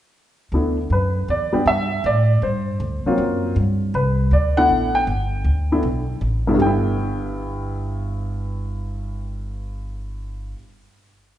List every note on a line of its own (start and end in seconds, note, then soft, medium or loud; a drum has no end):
0.52 0.89 D2 medium
0.52 0.76 A3 medium
0.52 0.76 B3 soft
0.52 0.76 D4 soft
0.52 0.76 E4 medium
0.90 1.27 F#2 medium
0.90 1.27 B4 medium
1.28 1.52 E2 medium
1.28 1.65 D5 medium
1.53 1.65 G3 medium
1.53 1.65 B3 medium
1.53 1.65 D4 medium
1.53 1.65 G4 medium
1.53 muted upright bass stroke soft
1.66 2.03 G2 medium
1.66 2.06 E5 medium
2.04 2.41 A2 medium
2.04 2.44 D5 medium
2.42 2.79 G2 medium
2.42 3.14 C5 medium
2.80 3.03 D2 medium
3.05 3.54 F#3 medium
3.05 3.54 A#3 medium
3.05 3.54 C4 medium
3.05 3.54 F4 medium
3.05 muted upright bass stroke soft
3.18 3.55 F#2 medium
3.56 3.93 G2 medium
3.94 4.30 C2 medium
3.94 4.33 B4 medium
4.31 4.68 D2 medium
4.31 4.58 D5 medium
4.57 5.05 A3 medium
4.57 5.06 B3 medium
4.57 5.06 D4 medium
4.57 5.06 E4 medium
4.57 4.96 F#5 loud
4.69 5.06 A1 medium
4.95 6.18 G5 medium
5.07 5.44 G1 medium
5.44 5.82 D2 medium
5.72 5.83 A3 medium
5.72 5.83 B3 medium
5.72 5.83 D4 medium
5.72 5.83 E4 medium
5.83 6.20 B1 medium
6.21 6.58 A1 medium
6.47 6.53 G2 medium
6.47 6.96 A3 medium
6.47 6.61 B3 medium
6.47 6.96 D4 medium
6.47 6.65 E4 medium
6.55 10.52 G2 medium
6.55 10.55 G3 medium
6.59 10.53 G1 medium
6.59 10.60 B3 medium
6.59 10.55 G5 medium
6.66 10.64 E4 medium